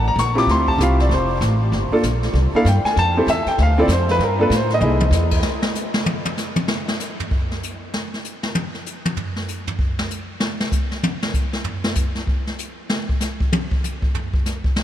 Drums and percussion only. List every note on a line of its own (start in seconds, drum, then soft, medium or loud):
0.18 snare medium
0.18 hi-hat pedal medium
0.38 snare soft
0.49 brush sweep soft
0.49 snare medium
0.68 kick medium
0.80 snare medium
0.80 hi-hat pedal medium
1.00 snare soft
1.11 brush sweep medium
1.11 snare soft
1.41 snare medium
1.41 hi-hat pedal medium
1.73 brush sweep medium
1.73 snare medium
2.03 snare medium
2.03 hi-hat pedal medium
2.23 snare soft
2.35 brush sweep medium
2.35 snare soft
2.66 snare medium
2.66 hi-hat pedal medium
2.86 snare soft
2.97 brush sweep soft
2.97 snare medium
3.28 snare medium
3.28 hi-hat pedal medium
3.46 snare soft
3.58 brush sweep soft
3.58 snare medium
3.89 snare medium
3.89 hi-hat pedal medium
4.09 snare soft
4.20 brush sweep medium
4.20 snare medium
4.51 snare medium
4.51 hi-hat pedal medium
4.70 snare soft
4.81 high tom medium
5.00 high tom medium
5.12 snare medium
5.12 hi-hat pedal medium
5.31 kick medium
5.31 crash medium
5.43 snare loud
5.62 snare medium
5.75 snare soft
5.75 hi-hat pedal medium
5.94 snare loud
6.06 high tom loud
6.25 high tom loud
6.37 snare soft
6.37 hi-hat pedal medium
6.56 high tom medium
6.68 snare loud
6.88 snare loud
7.00 snare soft
7.00 hi-hat pedal medium
7.20 floor tom loud
7.31 kick medium
7.51 snare soft
7.63 hi-hat pedal medium
7.94 snare loud
8.14 snare soft
8.24 hi-hat pedal medium
8.43 snare loud
8.55 high tom loud
8.74 snare soft
8.86 hi-hat pedal medium
9.05 high tom loud
9.17 floor tom loud
9.36 snare soft
9.48 hi-hat pedal medium
9.67 floor tom loud
9.79 kick medium
9.99 snare loud
10.10 hi-hat pedal medium
10.40 snare loud
10.60 snare loud
10.72 kick medium
10.72 hi-hat pedal medium
10.91 snare soft
11.03 high tom loud
11.23 snare loud
11.34 kick medium
11.34 hi-hat pedal medium
11.53 snare medium
11.64 floor tom loud
11.84 snare medium
11.95 kick medium
11.95 hi-hat pedal medium
12.15 snare soft
12.27 kick medium
12.47 snare soft
12.58 hi-hat pedal medium
12.90 snare loud
13.09 kick medium
13.21 snare medium
13.21 hi-hat pedal medium
13.40 kick medium
13.53 high tom loud
13.71 kick medium
13.84 hi-hat pedal medium
13.84 high tom soft
14.02 kick medium
14.15 floor tom loud
14.34 kick medium
14.46 snare soft
14.46 hi-hat pedal medium
14.64 kick medium
14.76 snare loud